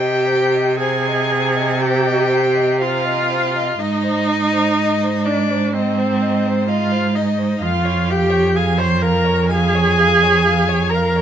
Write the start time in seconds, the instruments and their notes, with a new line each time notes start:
Already playing: cello C3, viola G4, violin G5
0.00 violin D#5
0.26 violin C5
0.54 violin D#5
0.78 viola G#4, violin C5 G#5
1.07 violin D#5
1.31 violin C5
1.56 violin D#5
1.81 viola G4, violin C5 G5
2.06 violin D#5
2.29 violin C5
2.55 violin D#5
2.80 viola F4, violin C5 F5
3.05 violin D#5
3.30 violin C5
3.55 violin D#5
3.78 cello G#2, viola D#4, violin D#5
4.04 violin C5
4.28 violin D#5
4.53 violin C5
4.76 violin D#5
5.03 violin C5
5.25 viola D4, violin D5 D#5
5.50 violin C5
5.74 viola C4, violin C5 D#5
5.98 violin C5
6.21 violin D#5
6.47 violin C5
6.68 viola F4, violin D#5 F5
6.92 violin C5
7.14 viola D#4, violin D#5
7.38 violin C5
7.59 viola F4, violin F5
7.63 cello F2, violin F5
7.85 violin C#5
8.09 viola G4, violin F5 G5
8.30 violin C#5
8.55 viola G#4, violin F5 G#5
8.78 viola C5, violin C#5 C6
9.02 viola A#4, violin F5 A#5
9.25 violin C#5
9.48 viola G#4, violin F5 G#5
9.75 violin C#5
9.98 violin F5
10.23 violin C#5
10.45 violin F5
10.69 violin C#5
10.90 viola A#4, violin A#5
10.94 violin F5
11.15 violin C#5